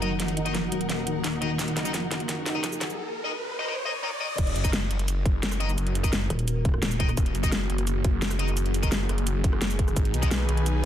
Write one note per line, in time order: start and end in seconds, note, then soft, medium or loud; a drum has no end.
0.00 0.71 F#1 medium
0.00 2.95 D#3 medium
0.00 0.13 F#3 medium
0.00 2.95 A#3 medium
0.00 2.99 D#4 medium
0.00 0.10 D#4 medium
0.00 2.95 F#4 medium
0.00 2.95 A#4 medium
0.00 2.99 A#4 medium
0.00 0.10 A#4 medium
0.00 0.10 D#5 loud
0.00 2.99 F#5 medium
0.00 closed hi-hat medium
0.00 riser medium
0.20 0.26 F3 medium
0.20 snare medium
0.20 closed hi-hat loud
0.28 closed hi-hat soft
0.37 0.47 D#4 loud
0.37 closed hi-hat medium
0.45 0.51 D#4 medium
0.45 0.51 A#4 medium
0.45 0.51 D#5 medium
0.45 closed hi-hat soft
0.54 0.65 F3 medium
0.54 snare medium
0.54 closed hi-hat loud
0.72 1.23 D#1 medium
0.72 0.87 F#3 loud
0.72 closed hi-hat medium
0.81 closed hi-hat soft
0.89 1.05 A#3 medium
0.89 snare medium
0.89 closed hi-hat medium
1.07 1.13 D#3 medium
1.07 closed hi-hat medium
1.24 1.58 D#1 medium
1.24 1.30 D#3 medium
1.24 snare medium
1.24 closed hi-hat loud
1.42 1.57 D#3 medium
1.42 1.49 D#4 medium
1.42 1.49 A#4 medium
1.42 1.49 D#5 medium
1.42 closed hi-hat medium
1.59 1.75 D#1 medium
1.59 1.65 D#3 medium
1.59 snare medium
1.59 closed hi-hat loud
1.59 shaker medium
1.68 closed hi-hat soft
1.76 2.10 F#1 medium
1.76 1.87 D#4 loud
1.76 snare medium
1.76 closed hi-hat medium
1.76 shaker soft
1.85 1.90 D#4 medium
1.85 1.90 A#4 medium
1.85 1.90 D#5 medium
1.85 closed hi-hat soft
1.85 shaker medium
1.94 2.04 F3 medium
1.94 snare medium
1.94 closed hi-hat loud
1.94 shaker soft
2.11 2.99 F#1 medium
2.11 2.18 D#3 medium
2.11 snare medium
2.11 closed hi-hat medium
2.20 closed hi-hat soft
2.29 2.35 D#3 medium
2.29 snare medium
2.29 closed hi-hat medium
2.29 shaker soft
2.46 2.57 D#4 loud
2.46 snare medium
2.46 closed hi-hat medium
2.55 2.60 D#4 medium
2.55 2.60 A#4 medium
2.55 2.60 D#5 medium
2.64 2.74 F3 medium
2.64 snare medium
2.64 closed hi-hat medium
2.64 shaker soft
2.72 shaker medium
2.81 2.87 D#3 medium
2.81 snare medium
2.81 closed hi-hat medium
2.90 shaker soft
3.25 3.30 D#4 medium
3.25 3.30 A#4 medium
3.25 3.30 D#5 medium
3.59 3.65 D#4 medium
3.59 3.65 A#4 medium
3.59 3.65 D#5 medium
3.68 3.73 D#4 medium
3.68 3.73 A#4 medium
3.68 3.73 D#5 medium
3.86 3.91 D#4 medium
3.86 3.91 A#4 medium
3.86 3.91 D#5 medium
4.03 4.08 D#4 medium
4.03 4.08 A#4 medium
4.03 4.08 D#5 medium
4.21 4.26 D#4 medium
4.21 4.26 A#4 medium
4.21 4.26 D#5 medium
4.38 4.54 D#1 loud
4.38 10.85 D#3 medium
4.38 9.93 A#3 medium
4.38 9.93 F#4 medium
4.38 7.15 A#4 medium
4.38 kick loud
4.38 closed hi-hat loud
4.38 crash loud
4.38 shaker medium
4.47 closed hi-hat soft
4.56 4.89 F#1 loud
4.56 closed hi-hat medium
4.56 shaker soft
4.64 4.69 D#4 medium
4.64 4.69 A#4 medium
4.64 4.69 D#5 medium
4.64 kick medium
4.64 closed hi-hat soft
4.64 shaker medium
4.73 snare loud
4.73 closed hi-hat loud
4.73 shaker soft
4.91 6.29 F#1 medium
4.91 closed hi-hat medium
4.99 closed hi-hat soft
5.08 closed hi-hat loud
5.08 shaker soft
5.26 kick loud
5.26 closed hi-hat medium
5.43 snare loud
5.43 closed hi-hat loud
5.43 shaker medium
5.52 cross-stick soft
5.52 shaker medium
5.60 5.68 D#4 medium
5.60 5.68 A#4 medium
5.60 5.68 D#5 loud
5.60 closed hi-hat medium
5.69 shaker soft
5.78 closed hi-hat loud
5.78 shaker soft
5.87 closed hi-hat soft
5.95 closed hi-hat medium
5.95 shaker soft
6.04 6.09 D#4 medium
6.04 6.09 A#4 medium
6.04 6.09 D#5 medium
6.04 kick medium
6.04 closed hi-hat soft
6.04 shaker medium
6.13 snare loud
6.13 closed hi-hat loud
6.13 shaker medium
6.30 6.81 D#1 medium
6.30 cross-stick soft
6.30 closed hi-hat medium
6.39 closed hi-hat soft
6.48 closed hi-hat medium
6.48 shaker soft
6.65 kick loud
6.65 closed hi-hat medium
6.74 cross-stick soft
6.82 7.16 D#1 loud
6.82 snare loud
6.82 closed hi-hat loud
6.82 shaker medium
6.91 shaker medium
7.00 7.08 D#4 medium
7.00 7.08 A#4 medium
7.00 7.08 D#5 loud
7.00 kick loud
7.00 closed hi-hat medium
7.09 cross-stick soft
7.09 shaker soft
7.17 7.33 D#1 medium
7.17 10.85 G#4 medium
7.17 kick loud
7.17 closed hi-hat loud
7.17 shaker medium
7.26 closed hi-hat soft
7.35 7.68 F#1 loud
7.35 closed hi-hat medium
7.35 shaker soft
7.43 7.48 D#4 medium
7.43 7.48 A#4 medium
7.43 7.48 D#5 medium
7.43 kick medium
7.43 closed hi-hat soft
7.43 shaker medium
7.52 snare loud
7.52 closed hi-hat medium
7.52 shaker soft
7.70 9.08 F#1 loud
7.70 closed hi-hat medium
7.78 closed hi-hat soft
7.87 closed hi-hat loud
7.87 shaker soft
8.04 kick loud
8.04 closed hi-hat medium
8.22 snare loud
8.22 closed hi-hat medium
8.22 shaker soft
8.31 cross-stick soft
8.31 shaker medium
8.39 8.47 D#4 medium
8.39 8.47 A#4 medium
8.39 8.47 D#5 loud
8.39 closed hi-hat medium
8.48 shaker soft
8.57 closed hi-hat medium
8.57 shaker medium
8.66 closed hi-hat soft
8.74 closed hi-hat medium
8.74 shaker soft
8.83 8.88 D#4 medium
8.83 8.88 A#4 medium
8.83 8.88 D#5 medium
8.83 kick medium
8.83 closed hi-hat soft
8.83 shaker medium
8.92 snare loud
8.92 closed hi-hat medium
8.92 shaker medium
9.09 9.95 F#1 medium
9.09 cross-stick soft
9.09 closed hi-hat medium
9.18 closed hi-hat soft
9.27 closed hi-hat medium
9.27 shaker soft
9.44 kick loud
9.44 closed hi-hat medium
9.53 cross-stick soft
9.62 snare loud
9.62 closed hi-hat medium
9.62 shaker soft
9.70 shaker medium
9.79 kick loud
9.79 closed hi-hat medium
9.88 cross-stick soft
9.88 shaker soft
9.96 10.12 G#1 loud
9.96 10.85 B3 medium
9.96 10.85 D#4 medium
9.96 10.85 B4 medium
9.96 kick loud
9.96 closed hi-hat loud
9.96 shaker medium
10.05 closed hi-hat soft
10.14 10.47 B1 medium
10.14 10.85 B4 medium
10.14 10.85 G#5 medium
10.14 closed hi-hat medium
10.14 shaker soft
10.22 10.27 G#3 medium
10.22 10.27 D#4 medium
10.22 10.27 G#4 medium
10.22 kick medium
10.22 closed hi-hat soft
10.22 shaker medium
10.31 snare loud
10.31 closed hi-hat medium
10.31 shaker medium
10.49 10.85 B1 loud
10.49 closed hi-hat medium
10.57 closed hi-hat soft
10.66 closed hi-hat medium
10.66 shaker medium